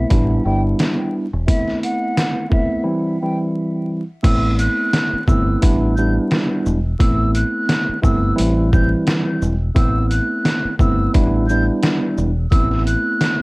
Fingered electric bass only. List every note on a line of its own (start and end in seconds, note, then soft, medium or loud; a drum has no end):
0.12 0.38 A1 loud
0.46 0.73 G1 medium
1.34 1.46 E1 medium
4.25 4.67 A1 loud
5.13 muted fingered electric bass stroke soft
5.28 5.55 G1 loud
5.63 6.17 A1 loud
6.66 6.93 E1 loud
7.00 7.42 A1 loud
7.89 muted fingered electric bass stroke soft
8.04 8.31 G1 loud
8.39 8.93 A1 loud
9.42 9.69 E1 loud
9.76 10.18 A1 loud
10.65 muted fingered electric bass stroke soft
10.80 11.07 G1 medium
11.15 11.69 A1 loud
12.18 12.45 E1 loud
12.52 12.94 A1 loud